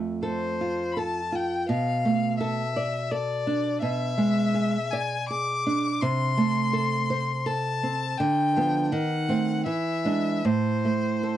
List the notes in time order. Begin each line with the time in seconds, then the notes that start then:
Already playing: F2 A3
0.23 A4 C5
0.61 F4
0.92 B5
0.97 A4 A5
1.32 F4 G5
1.69 B2 F5
2.05 A3
2.39 A4 E5
2.76 D5
3.11 A4 D5
3.47 D4
3.82 B2 E5
4.18 G#3
4.54 G#4
4.91 D5 G#5
5.29 G#4 D6
5.67 D4
6.01 C3 C6
6.38 A3
6.73 A4
7.10 C5
7.46 A4 A5
7.83 C4
8.18 D3 G5
8.56 F3 B3
8.92 D#3 F#5
9.29 A3 C4
9.66 E3 E5
10.05 G#3 D4
10.44 A2 C5
10.85 A3
11.23 A4